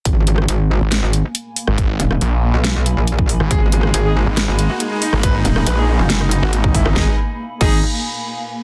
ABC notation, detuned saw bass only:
X:1
M:4/4
L:1/16
Q:1/4=139
K:G#m
V:1 name="Detuned saw bass" clef=bass
z6 z G,,,2 z6 G,,,- | G,,,2 z2 A,,,3 z8 G,,, | z6 z G,,,2 z6 G,,,- | G,,,2 z2 A,,,3 z4 G,,,4 z |
z16 |]